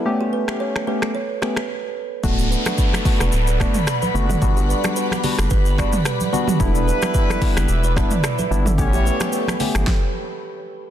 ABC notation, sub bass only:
X:1
M:4/4
L:1/16
Q:"Swing 16ths" 1/4=110
K:D
V:1 name="Sub bass" clef=bass
z16 | D,,,3 z4 E,,, D,,,3 z3 F,,,2 | G,,,3 z4 F,,, G,,,3 z4 z | E,,,3 z4 F,,, E,,,3 z3 G,,,2 |
A,,,3 z4 G,,, z8 |]